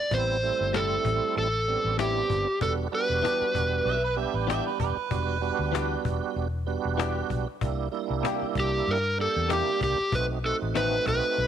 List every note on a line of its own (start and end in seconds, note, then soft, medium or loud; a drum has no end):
0.00 0.13 D5 medium
0.10 0.50 A1 medium
0.10 0.37 G3 medium
0.10 0.38 B3 medium
0.10 0.38 C4 medium
0.10 0.38 E4 medium
0.10 0.77 C5 medium
0.10 cajon bass loud
0.42 1.48 G3 medium
0.42 1.48 A3 medium
0.42 1.48 C4 medium
0.42 1.48 E4 medium
0.42 cajon slap soft
0.61 0.96 G1 medium
0.73 0.94 A2 medium
0.73 0.94 G3 medium
0.73 0.94 C4 medium
0.73 0.95 E4 medium
0.73 1.37 A4 medium
0.73 cajon slap loud
1.05 1.19 A1 loud
1.05 cajon bass medium
1.36 1.76 A1 medium
1.36 2.00 A4 medium
1.36 cajon slap soft
1.67 2.48 G3 medium
1.67 2.48 B3 medium
1.67 2.48 C4 medium
1.67 2.48 D4 medium
1.67 cajon slap soft
1.85 2.21 A1 medium
1.98 2.19 A2 medium
1.98 2.19 G3 medium
1.98 2.19 C4 medium
1.98 2.20 E4 medium
1.98 2.58 G4 medium
1.98 cajon slap loud
2.30 2.44 G1 medium
2.30 cajon bass medium
2.61 2.86 E1 medium
2.61 2.88 G3 medium
2.61 2.88 B3 medium
2.61 2.88 D4 medium
2.61 2.88 F#4 medium
2.61 2.71 A4 medium
2.61 cajon bass loud
2.92 3.98 G3 medium
2.92 3.98 B3 medium
2.92 3.98 D4 medium
2.92 3.98 F#4 medium
2.92 4.15 B4 medium
2.92 cajon slap soft
3.10 3.21 E1 medium
3.22 3.43 E3 medium
3.22 3.44 B3 medium
3.22 3.44 D4 medium
3.22 3.45 G4 medium
3.22 cajon slap loud
3.41 muted fingered electric bass stroke soft
3.55 3.80 E1 medium
3.55 cajon bass medium
3.85 4.25 B1 medium
3.85 4.03 E5 medium
3.85 cajon slap soft
4.04 4.19 B4 medium
4.17 4.97 G3 medium
4.17 4.97 B3 medium
4.17 4.97 D4 medium
4.17 4.97 G4 medium
4.17 4.38 E5 medium
4.17 cajon slap soft
4.34 4.59 A1 medium
4.34 4.49 B4 medium
4.47 4.68 E3 medium
4.47 4.69 B3 medium
4.47 4.69 D4 medium
4.47 4.69 G4 medium
4.47 4.66 E5 medium
4.47 cajon slap loud
4.67 4.79 B4 medium
4.80 4.94 E1 medium
4.80 6.02 B4 medium
4.80 cajon bass medium
5.11 5.50 E1 medium
5.11 5.38 G3 medium
5.11 5.38 B3 medium
5.11 5.38 D4 medium
5.11 5.38 F#4 medium
5.11 cajon bass loud
5.41 6.48 G3 medium
5.41 6.48 B3 medium
5.41 6.48 D4 medium
5.41 6.48 F#4 medium
5.41 cajon slap soft
5.59 5.96 D2 medium
5.72 5.93 E3 medium
5.72 5.94 B3 medium
5.72 5.94 D4 medium
5.72 5.94 G4 medium
5.72 cajon slap loud
6.05 6.19 E1 medium
6.05 cajon bass medium
6.36 6.75 E1 medium
6.36 cajon slap soft
6.66 7.47 G3 medium
6.66 7.47 B3 medium
6.66 7.47 D4 medium
6.66 7.48 F#4 medium
6.66 cajon slap soft
6.85 7.21 E1 medium
6.98 7.19 E3 medium
6.98 7.19 B3 medium
6.98 7.20 D4 medium
6.98 7.20 G4 loud
6.98 cajon slap loud
7.30 7.44 B1 medium
7.30 cajon bass medium
7.61 7.87 C2 medium
7.61 7.88 G3 medium
7.61 7.88 A#3 medium
7.61 7.89 D4 medium
7.61 7.89 E4 medium
7.61 cajon bass loud
7.92 8.98 G3 medium
7.92 8.98 A#3 medium
7.92 8.98 D4 medium
7.92 8.98 E4 medium
7.92 cajon slap soft
8.10 8.22 C2 medium
8.23 8.44 C3 medium
8.23 8.45 A#3 medium
8.23 8.45 E4 medium
8.23 8.45 G4 medium
8.23 cajon slap loud
8.42 muted fingered electric bass stroke soft
8.55 8.81 C2 medium
8.55 cajon bass medium
8.60 8.90 G4 medium
8.87 9.26 G2 medium
8.87 9.21 A#4 medium
8.87 cajon slap soft
9.18 9.98 G3 medium
9.18 9.99 A#3 medium
9.18 9.98 D4 medium
9.18 9.99 G4 medium
9.18 9.49 A4 medium
9.18 cajon slap soft
9.36 9.61 E2 medium
9.49 9.70 C3 medium
9.49 9.70 A#3 medium
9.49 9.70 E4 medium
9.49 9.71 G4 medium
9.49 cajon slap loud
9.53 9.82 G4 medium
9.81 9.95 C2 medium
9.81 10.15 G4 medium
9.81 cajon bass medium
10.00 muted fingered electric bass stroke soft
10.12 10.51 B1 loud
10.12 10.39 A3 medium
10.12 10.39 C4 medium
10.12 10.39 D#4 medium
10.12 10.39 F#4 medium
10.12 10.23 B4 loud
10.12 cajon bass loud
10.43 11.47 A3 medium
10.43 11.47 C4 medium
10.43 11.47 D#4 medium
10.43 11.47 F#4 medium
10.43 10.54 A4 medium
10.43 cajon slap soft
10.62 10.98 A1 medium
10.62 cajon slap soft
10.75 10.95 B2 medium
10.75 10.95 D#3 medium
10.75 10.96 A3 medium
10.75 10.96 C4 medium
10.75 11.07 B4 medium
10.75 cajon slap loud
11.06 11.20 B1 loud
11.06 11.47 B4 medium
11.06 cajon bass medium
11.38 11.47 B1 medium
11.38 cajon slap soft